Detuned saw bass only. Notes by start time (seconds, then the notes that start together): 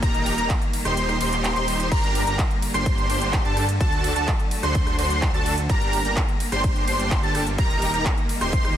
0.03 D#1
0.38 D#1
0.85 D#1
1.21 D#1
1.56 D#1
1.92 G1
2.27 G1
2.74 G1
3.10 G1
3.45 G2
3.81 D2
4.16 D2
4.63 D2
4.99 D2
5.34 D2
5.69 G1
6.05 G1
6.52 G1
6.88 G1
7.23 G1
7.58 D#1
7.94 D#1
8.41 D#1